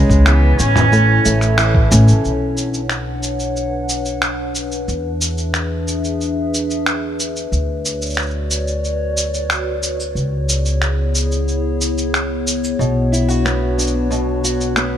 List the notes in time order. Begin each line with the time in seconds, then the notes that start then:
Already playing: C#3 G#3 C#4 E4 B4 C#5 G#5
0.10 C#2, kick, cabasa
0.26 E3 B3, finger snap, cabasa
0.59 A1 B3 C#4, cabasa
0.76 mid tom, cabasa
0.92 A2 A4 A5, cabasa
1.25 A1 A3, cabasa
1.41 finger snap, cabasa
1.58 E3, finger snap, cabasa
1.75 kick
1.91 A2 C#4, kick, cabasa
2.08 A1, cabasa
2.25 B1 D4 B4 C#5 F#5, cabasa
2.57 cabasa
2.74 cabasa
2.90 finger snap, cabasa
3.23 cabasa
3.39 cabasa
3.56 cabasa
3.89 cabasa
4.05 cabasa
4.22 finger snap, cabasa
4.55 cabasa
4.72 cabasa
4.87 E2 D4 G#4 E5, cabasa
5.21 cabasa
5.37 cabasa
5.54 finger snap, cabasa
5.88 cabasa
6.04 cabasa
6.21 cabasa
6.54 cabasa
6.70 cabasa
6.86 finger snap, cabasa
7.20 cabasa
7.36 cabasa
7.52 D2 F#4 C#5 D5, cabasa
7.85 cabasa
8.02 cabasa
8.06 cabasa
8.10 cabasa
8.14 finger snap, cabasa
8.18 cabasa
8.22 cabasa
8.30 cabasa
8.51 cabasa
8.68 cabasa
8.84 cabasa
9.17 cabasa
9.34 cabasa
9.50 finger snap, cabasa
9.83 cabasa
10.00 cabasa
10.15 C#2 B3 E4 G#4 C#5, cabasa
10.49 cabasa
10.65 cabasa
10.82 finger snap, cabasa
11.15 cabasa
11.31 cabasa
11.48 cabasa
11.81 cabasa
11.98 cabasa
12.14 finger snap, cabasa
12.47 cabasa
12.64 cabasa
12.79 B1 B2 D4 F#4, cabasa
13.12 E4, cabasa
13.28 F#4, cabasa
13.45 B3, finger snap, cabasa
13.78 D4, cabasa
13.87 cabasa
14.10 B2, cabasa
14.44 F#4, cabasa
14.61 cabasa
14.76 B3, finger snap, cabasa